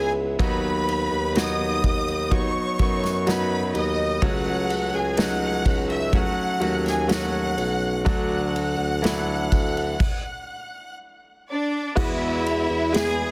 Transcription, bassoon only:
Already playing: C#2
0.39 D#2
1.11 D#2
1.84 D#2
2.79 F#2
3.74 D#2
4.22 C#2
4.93 C#2
5.66 C#2
6.60 D#2
7.57 B1
8.06 D2
8.78 D2
9.52 D2
11.96 E2
12.69 E2

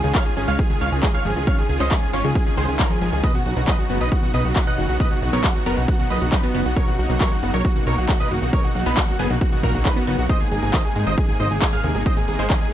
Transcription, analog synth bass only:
0.04 C#2
0.37 G#1
0.48 C#2
0.81 C#2
0.92 C#2
1.25 G#1
1.36 C#2
1.69 C#2
1.80 C#2
2.13 G#1
2.24 C#2
2.57 C#2
2.69 C#2
3.02 G#1
3.13 C#2
3.46 B1
3.57 B1
3.90 F#1
4.01 B1
4.34 B1
4.45 B1
4.78 F#1
4.89 B1
5.22 B1
5.33 B1
5.66 F#1
5.77 B1
6.10 B1
6.21 B1
6.55 F#1
6.66 B1
6.99 B1
7.10 B1
7.43 F#1
7.54 B1
7.87 B1
7.98 B1
8.31 F#1
8.42 B1
8.75 B1
8.86 B1
9.19 F#1
9.30 B1
9.63 B1
9.74 B1
10.08 F#1
10.19 B1
10.52 G#1
10.63 G#1
10.96 G#2
11.07 G#1
11.40 G#1
11.51 G#1
11.84 D#2
11.95 G#1
12.28 G#1
12.39 G#1

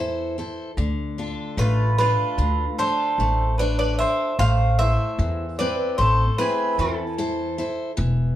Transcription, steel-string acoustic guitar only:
Already playing: E3
0.00 E4 A4 C5
0.38 E4 A4 C5
0.78 D3
1.18 D4 F4 A4
1.58 A3
1.99 D4 F4 A4
2.38 D3
2.79 D4 F4 A4
3.20 A3
3.60 D4 F4 A4
4.00 D4 F4 A4
4.41 A3
4.81 E4 A4 C5
5.19 E3
5.59 C4 E4 A4
5.98 A3
6.38 C4 E4
6.79 E3
7.18 E4 A4 C5
7.58 E4 A4 C5
7.97 E3

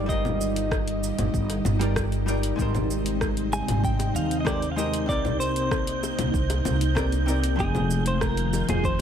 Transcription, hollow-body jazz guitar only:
0.06 G3 D#4 F4
0.11 A#4 D#5
1.79 G3 D#4 F4 A#4 D5
2.26 G3 D#4 F4 A#4 D5
2.56 G3 G#3 D#4
2.60 A#4 C5
4.45 G#3 D#4 G4 A#4 C5
4.76 G#3 D#4 G4 A#4 C5
5.06 C3 C4 D#4
5.11 A#4 D5
6.95 C3 C4 D#4 A#4 D5
7.26 C3 C4 D#4 A#4 D5
7.56 F3 C4 G5
7.60 G#4 D#5

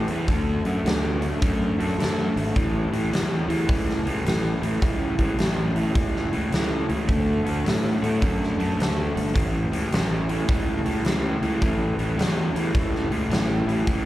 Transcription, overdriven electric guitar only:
0.10 A2 E3
0.29 D3 A3
0.66 D3 A3
0.86 D3 B3
1.22 D3 A3
1.41 D3 A3
1.79 D3 A3
1.99 D3 A3
2.36 D3 A3
2.55 A2 E3
2.92 A2 E3
3.11 A2 F#3
3.48 A2 E3
3.68 A2 E3
4.05 A2 E3
4.25 A2 E3
4.62 A2 E3
4.82 A2 E3
5.18 A2 E3
5.38 A2 F#3
5.75 A2 E3
5.96 A2 E3
6.32 A2 E3
6.51 A2 E3
6.89 A2 E3
7.08 D3 A3
7.44 D3 A3
7.64 D3 B3
8.01 D3 A3
8.21 D3 A3
8.58 D3 A3
8.77 D3 A3
9.15 D3 A3
9.33 A2 E3
9.71 A2 E3
9.92 A2 F#3
10.29 A2 E3
10.48 A2 E3
10.85 A2 E3
11.04 A2 E3
11.42 A2 E3
11.62 A2 E3
11.99 A2 E3
12.17 A2 F#3
12.55 A2 E3
12.75 A2 E3
13.11 A2 E3
13.30 A2 E3
13.67 A2 E3
13.87 A2 E3

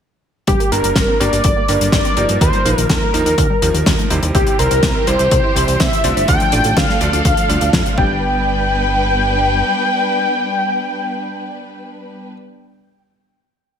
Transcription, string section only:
4.35 E3 G3 C4 G4
6.28 F3 A3 D4 A4
7.97 G3 B3 D4 B4

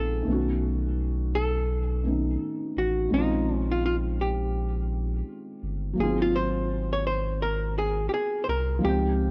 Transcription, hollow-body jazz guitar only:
Already playing: A4
1.35 A4
2.78 F#4
3.14 D#4
3.56 C#4
3.71 F4
3.86 F4
4.21 G4
6.00 G#4
6.22 F4
6.35 C5
6.93 C#5
7.07 C5
7.42 A#4
7.78 G#4
8.09 G4
8.14 G#4
8.44 C5
8.49 A#4
8.85 G4

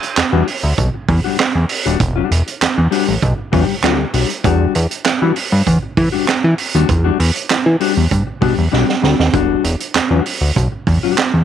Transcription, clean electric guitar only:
0.02 muted clean electric guitar stroke
0.17 muted clean electric guitar stroke
0.32 G3 D4 F#4
0.47 muted clean electric guitar stroke
0.63 muted clean electric guitar stroke
0.78 muted clean electric guitar stroke
0.94 muted clean electric guitar stroke
1.24 G3 D4 F#4
1.39 muted clean electric guitar stroke
1.55 muted clean electric guitar stroke
1.85 G3 D4 F#4
2.16 G3 D4 F#4
2.31 muted clean electric guitar stroke
2.46 muted clean electric guitar stroke
2.61 muted clean electric guitar stroke
2.77 muted clean electric guitar stroke
2.91 G3 D4 F#4
3.07 muted clean electric guitar stroke
3.38 muted clean electric guitar stroke
3.52 G3 D4 F#4
3.68 muted clean electric guitar stroke
3.83 G3 D4 F#4
3.99 muted clean electric guitar stroke
4.13 G3 D4 F#4
4.29 muted clean electric guitar stroke
4.44 G3 D4 F#4
4.91 muted clean electric guitar stroke
5.05 muted clean electric guitar stroke
5.21 G3 D4 F#4
5.51 muted clean electric guitar stroke
5.66 muted clean electric guitar stroke
5.83 muted clean electric guitar stroke
6.12 G3 D4 F#4
6.44 muted clean electric guitar stroke
6.75 G3 D4 F#4
6.89 muted clean electric guitar stroke
7.04 G3 D4 F#4
7.20 muted clean electric guitar stroke
7.36 muted clean electric guitar stroke
7.50 muted clean electric guitar stroke
7.66 muted clean electric guitar stroke
7.80 G3 D4 F#4
7.95 muted clean electric guitar stroke
8.27 muted clean electric guitar stroke
8.41 G3 D4 F#4
8.57 muted clean electric guitar stroke
8.71 G3 D4 F#4
8.89 muted clean electric guitar stroke
9.02 G3 D4 F#4
9.18 muted clean electric guitar stroke
9.32 G3 D4 F#4
9.79 muted clean electric guitar stroke
9.94 muted clean electric guitar stroke
10.11 G3 D4 F#4
10.42 muted clean electric guitar stroke
10.55 muted clean electric guitar stroke
10.72 muted clean electric guitar stroke
11.03 G3 D4 F#4
11.34 muted clean electric guitar stroke

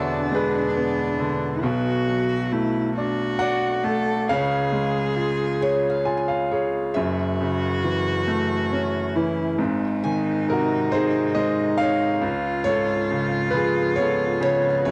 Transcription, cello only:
Already playing: D4
1.64 F#4
2.52 E4
2.97 F#4
3.84 A4
4.28 G#4
6.95 F#4
9.16 E4
9.59 D#4
12.21 F4
14.86 F#4

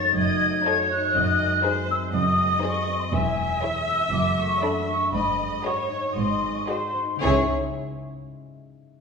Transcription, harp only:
Already playing: F#2 A3 C#4 D#4 F#4
0.15 F#2
0.40 A3
0.65 F#4
0.89 D#4
1.14 F#2
1.38 G#3
1.63 G#4
1.87 C4
2.12 F#2
2.37 G#3
2.62 G#4
2.87 C4
3.12 E2
3.37 G#3
3.62 G#4
3.87 C#4
4.12 F#2
4.38 A3
4.62 F#4
4.87 D4
5.13 G#2
5.38 G#3
5.64 F#4
5.90 D#4
6.15 G#2
6.42 G#3
6.69 F#4
6.95 D#4
7.16 C#3 G#3
7.20 C#4 E4
7.25 G#4 E5

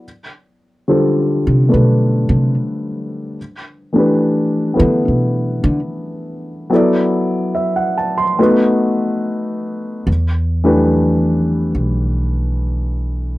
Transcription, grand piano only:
0.88 D3 G3 F4 A4 C5
1.69 A3 D4 A4 B4
3.93 E3 A3 D4 G4
3.98 B4
4.74 B3 E4 A4 B4
6.70 F#3 B3 E4 A4
6.74 D5
7.55 E5
7.76 F#5
7.97 A5
8.18 C6
8.39 A3 B3 D#4 F#4 B4
10.64 E3 A3 D4 G4 B4

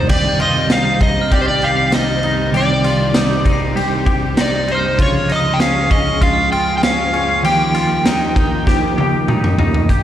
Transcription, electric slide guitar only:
Already playing: C5
0.10 D5
0.42 D#5
0.72 F5
1.03 D#5
1.33 D5
1.41 C5
1.48 D5
1.64 F5
1.95 D#5
2.57 D5
4.41 D5
4.72 C5
5.03 C#5
5.32 D#5
5.54 G5
5.62 F5
5.92 D#5
6.23 F5
6.52 G5
6.78 G5
6.84 F5
7.45 G5

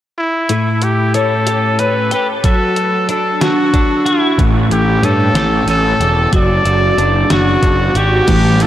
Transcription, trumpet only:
0.18 E4
0.83 G4
1.15 A4
1.79 B4
2.13 B4
2.45 A4
3.10 A4
3.42 F#4
4.06 E4
4.71 G4
5.04 A4
5.70 A4
6.36 D5
7.32 F#4
7.97 G4
8.62 A4

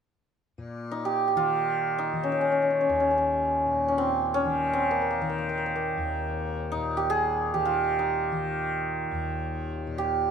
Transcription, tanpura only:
0.58 A#2
1.36 D#3
2.13 D#3
2.89 D#2
3.66 A#2
4.45 D#3
5.21 D#3
5.97 D#2
6.74 A#2
7.54 D#3
8.32 D#3
9.11 D#2
9.87 A#2

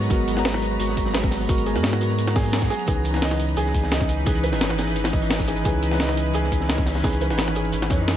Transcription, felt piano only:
Already playing: F#4 G#4 B4
0.10 F#4
0.45 B4
0.80 F#4
1.15 B4
1.49 F#4
1.66 G#4
2.01 F#4
2.36 G#4
2.70 G#4
2.88 G#4
3.22 D#5
3.57 G#4
3.92 D#5
4.27 G#4
4.44 B4
4.78 G#4
5.13 D#5
5.48 G#4
5.65 G#4
6.00 D#5
6.34 G#4
6.69 D#5
7.04 G#4
7.21 B4
7.56 G#4
7.91 C#5

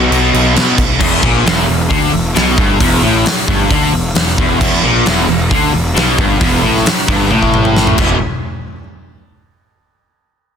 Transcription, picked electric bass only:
0.11 B1
0.34 B1
0.56 B2
0.78 B1
1.01 E1
1.23 A#1
1.46 E1
1.68 E1
1.90 D2
2.13 E1
2.36 B1
2.58 G1
2.81 E1
3.02 A1
3.26 muted picked electric bass stroke
3.48 G1
3.71 D2
3.93 E1
4.16 E1
4.38 E1
4.61 E1
4.83 A#1
5.06 E1
5.28 E1
5.51 D2
5.73 E1
5.96 B1
6.18 G1
6.41 E1
6.63 A1
6.86 muted picked electric bass stroke
7.08 G1
7.30 A1
7.99 E1

